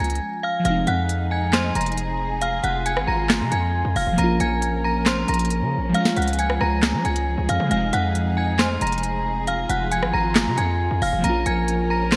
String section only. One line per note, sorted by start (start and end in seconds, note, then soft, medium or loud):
0.65 11.20 F3 medium
0.65 2.40 D#4 medium
0.65 4.14 G#4 medium
2.41 4.16 F4 medium
4.18 7.67 C#4 medium
4.18 5.93 A#4 medium
5.94 11.20 G#4 medium
7.71 9.46 D#4 medium
9.47 11.22 F4 medium
11.24 12.16 F3 medium
11.24 12.16 C#4 medium
11.24 12.16 A#4 loud